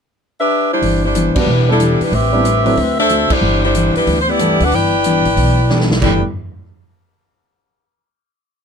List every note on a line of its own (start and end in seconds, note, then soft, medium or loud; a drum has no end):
0.40 0.69 D4 medium
0.40 0.69 G4 medium
0.40 0.69 B4 medium
0.40 0.69 E5 medium
0.72 1.01 G3 medium
0.72 1.02 D4 medium
0.72 1.02 E4 medium
0.72 1.02 C5 medium
0.82 1.32 G1 medium
0.82 1.05 G2 soft
0.82 1.05 E3 soft
0.82 1.05 B3 medium
0.82 1.05 D4 medium
0.82 open hi-hat soft
1.04 1.34 G3 medium
1.04 1.34 D4 medium
1.04 1.34 E4 medium
1.04 1.34 C5 medium
1.15 1.37 G2 medium
1.15 1.37 E3 medium
1.15 1.37 B3 medium
1.15 1.37 D4 medium
1.15 closed hi-hat medium
1.35 1.46 G3 medium
1.35 1.69 G3 medium
1.35 1.46 B3 medium
1.35 1.46 D4 medium
1.35 1.69 D4 medium
1.35 1.46 E4 medium
1.35 1.69 E4 medium
1.35 1.46 F#4 medium
1.35 1.69 B4 medium
1.35 muted upright bass stroke soft
1.35 kick medium
1.35 crash medium
1.47 1.96 E1 medium
1.47 1.70 E3 soft
1.47 1.70 B3 soft
1.47 1.70 D4 soft
1.47 1.70 G4 soft
1.69 1.79 G3 medium
1.69 2.00 G3 medium
1.69 1.79 B3 medium
1.69 1.79 D4 medium
1.69 2.00 D4 medium
1.69 1.79 E4 soft
1.69 2.00 E4 medium
1.69 1.79 A4 medium
1.69 2.00 A4 medium
1.80 2.02 E3 medium
1.80 2.02 B3 medium
1.80 2.02 D4 medium
1.80 2.03 G4 medium
1.80 closed hi-hat medium
2.01 2.13 G3 medium
2.01 2.13 D4 medium
2.01 2.13 E4 medium
2.01 2.13 B4 medium
2.01 muted upright bass stroke soft
2.01 open hi-hat soft
2.12 2.74 A1 medium
2.12 2.34 A2 soft
2.12 2.34 G3 soft
2.12 2.35 C4 soft
2.12 2.99 C4 medium
2.12 2.35 D4 medium
2.12 2.78 G4 medium
2.12 2.99 B4 medium
2.12 2.98 E5 medium
2.12 open hi-hat soft
2.32 2.43 G3 medium
2.32 2.43 B3 medium
2.32 2.43 C4 soft
2.32 2.44 D4 medium
2.32 2.44 E4 medium
2.45 2.67 A2 medium
2.45 2.67 G3 medium
2.45 2.67 C4 medium
2.45 2.67 D4 medium
2.45 closed hi-hat medium
2.65 2.76 F#3 medium
2.65 2.76 A3 medium
2.65 2.76 C4 medium
2.65 2.76 D4 medium
2.65 2.76 E4 medium
2.65 open hi-hat soft
2.77 3.27 D2 medium
2.77 2.99 D3 soft
2.77 2.99 A3 soft
2.77 3.00 C4 soft
2.77 3.00 F#4 medium
2.77 open hi-hat soft
3.00 3.29 D4 medium
3.00 3.29 A4 medium
3.00 3.29 C5 medium
3.00 3.29 E5 loud
3.09 3.31 D3 medium
3.09 3.32 A3 medium
3.09 3.32 C4 medium
3.09 3.32 F#4 medium
3.09 closed hi-hat medium
3.30 3.63 G3 medium
3.30 3.63 D4 medium
3.30 3.63 E4 medium
3.30 3.63 C5 loud
3.30 muted upright bass stroke soft
3.30 kick medium
3.30 crash medium
3.41 3.91 G1 medium
3.41 3.64 G2 soft
3.41 3.64 E3 soft
3.41 3.64 B3 medium
3.41 3.65 D4 medium
3.64 3.94 G3 medium
3.64 3.94 D4 medium
3.64 3.94 E4 medium
3.64 3.94 C5 medium
3.74 3.96 G2 medium
3.74 3.96 E3 medium
3.74 3.97 B3 medium
3.74 3.97 D4 medium
3.74 closed hi-hat medium
3.95 4.18 G3 medium
3.95 4.18 D4 medium
3.95 4.18 E4 medium
3.95 4.18 B4 medium
3.95 muted upright bass stroke soft
3.95 open hi-hat soft
4.07 4.56 D2 medium
4.07 4.29 G2 soft
4.07 4.29 E3 soft
4.07 4.29 B3 soft
4.07 4.29 D4 soft
4.07 open hi-hat soft
4.21 4.29 C5 medium
4.29 4.61 B3 medium
4.29 4.61 E4 medium
4.29 4.61 G4 medium
4.29 4.61 D5 loud
4.39 4.61 G2 medium
4.39 4.61 E3 medium
4.39 4.58 G3 medium
4.39 4.58 A3 soft
4.39 4.58 B3 medium
4.39 4.62 B3 medium
4.39 4.58 D4 medium
4.39 4.62 D4 medium
4.39 4.58 E4 medium
4.39 closed hi-hat medium
4.60 4.71 D2 medium
4.60 4.73 D4 medium
4.60 4.73 G4 medium
4.60 4.73 B4 medium
4.60 4.73 F#5 loud
4.60 open hi-hat soft
4.72 5.21 G1 medium
4.72 4.94 G2 soft
4.72 4.94 E3 soft
4.72 4.95 B3 soft
4.72 4.95 D4 medium
4.72 5.91 E4 medium
4.72 5.91 B4 medium
4.72 5.91 D5 medium
4.72 5.91 G5 medium
4.72 open hi-hat soft
5.04 5.26 G2 medium
5.04 5.27 E3 medium
5.04 5.27 B3 medium
5.04 5.27 D4 medium
5.04 closed hi-hat medium
5.25 5.36 G#1 medium
5.25 open hi-hat soft
5.36 5.98 B1 medium
5.36 5.58 G2 soft
5.36 5.59 E3 soft
5.36 5.59 B3 soft
5.36 5.59 D4 soft
5.36 open hi-hat soft
5.69 5.91 G2 medium
5.69 5.91 E3 medium
5.69 5.88 G3 soft
5.69 5.88 A3 soft
5.69 5.88 B3 soft
5.69 5.92 B3 medium
5.69 5.88 D4 soft
5.69 5.92 D4 medium
5.69 5.88 E4 medium
5.69 snare soft
5.80 snare medium
5.91 snare medium
6.01 6.21 G1 medium
6.01 6.18 G2 medium
6.01 6.18 E3 medium
6.01 6.20 G3 medium
6.01 6.20 A3 medium
6.01 6.21 B3 medium
6.01 6.19 B3 medium
6.01 6.21 D4 medium
6.01 6.19 D4 medium
6.01 6.21 E4 medium
6.01 6.22 E4 medium
6.01 6.22 B4 medium
6.01 6.22 D5 medium
6.01 6.22 G5 medium
6.01 kick medium
6.01 floor tom medium
6.01 crash medium